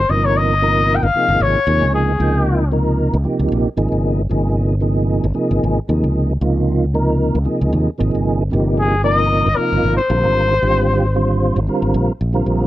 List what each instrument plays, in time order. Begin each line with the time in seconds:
Already playing: trumpet C5
0.09 fretless electric bass G1, tonewheel organ C3 F3 A#3 D#4 A#4, trumpet D#5
0.25 trumpet C#5
0.37 trumpet D#5
0.62 tonewheel organ C3 F3 A#3 D#4 A#4
0.95 trumpet G5
1.03 fretless electric bass G1, trumpet F5
1.14 tonewheel organ C3 F3 A#3 D#4 G#4, muted fretless electric bass stroke
1.28 fretless electric bass G1
1.40 fretless electric bass G#1, trumpet C#5
1.67 fretless electric bass D#2, tonewheel organ C3 F3 A#3 D#4 G#4
1.82 fretless electric bass C#2
1.94 trumpet G#4
2.19 fretless electric bass C#2, tonewheel organ C3 F3 A#3 D#4 G5
2.72 tonewheel organ C3 F3 A#3 D#4 A#4
3.14 fretless electric bass C#2
3.24 tonewheel organ C3 F3 A#3 D#4 G4, muted fretless electric bass stroke
3.39 fretless electric bass C#2
3.52 fretless electric bass A#1
3.77 fretless electric bass G#1, tonewheel organ C3 F3 A#3 D#4 G#4
3.92 fretless electric bass G1
4.29 fretless electric bass G1, tonewheel organ C3 F3 A#3 D#4 G#4
4.80 tonewheel organ C3 F3 A#3 D#4 G#4
5.24 fretless electric bass G1
5.34 tonewheel organ C3 F3 A#3 D#4 G#4, muted fretless electric bass stroke
5.51 fretless electric bass G1
5.64 fretless electric bass G#1
5.88 fretless electric bass D#2, tonewheel organ C3 F3 A#3 D#4 G#4
6.04 fretless electric bass C#2
6.41 fretless electric bass C#2, tonewheel organ C3 F3 A#3 D#4 F4
6.93 tonewheel organ C3 F3 A#3 D#4 A#4
7.35 fretless electric bass C#2
7.45 tonewheel organ C3 F3 A#3 D#4 G#4, muted fretless electric bass stroke
7.61 fretless electric bass C#2
7.73 fretless electric bass D#2
7.98 fretless electric bass G#1, tonewheel organ C3 F3 A#3 D#4 G#4
8.15 fretless electric bass G1
8.50 fretless electric bass G1, tonewheel organ C3 F3 A#3 D#4 G4
8.79 trumpet G#4
9.03 tonewheel organ C3 F3 A#3 D#4 A#4, trumpet D#5
9.46 fretless electric bass G1
9.56 tonewheel organ C3 F3 A#3 D#4 F4, trumpet A#4
9.72 fretless electric bass G1
9.84 fretless electric bass G#1
9.97 trumpet C5
10.10 fretless electric bass A#1, tonewheel organ D3 G3 C4 F4 A#4
10.24 fretless electric bass G#1
10.62 fretless electric bass G#1, tonewheel organ D3 G3 C4 F4 G4
11.15 tonewheel organ D3 G3 C4 F4 C5
11.56 fretless electric bass G#1
11.67 tonewheel organ D3 G3 C4 F4 A#4, muted fretless electric bass stroke
11.82 fretless electric bass G#1
11.94 fretless electric bass A#1
12.21 fretless electric bass A#1
12.33 tonewheel organ D3 G3 C4 F4 A#4
12.46 fretless electric bass A#1